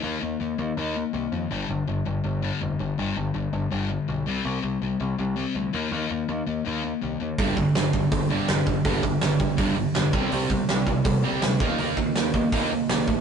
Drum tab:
HH |--------|--------|--------|--------|
SD |--------|--------|--------|--------|
BD |--------|--------|--------|--------|

HH |--------|o-o-o-o-|o-o-o-o-|o-o-o-o-|
SD |--------|--o---o-|--o---o-|--o---o-|
BD |--------|oo-oo--o|oo-oo--o|-o-oo--o|

HH |o-o-o-o-|
SD |--o---o-|
BD |-o-oo--o|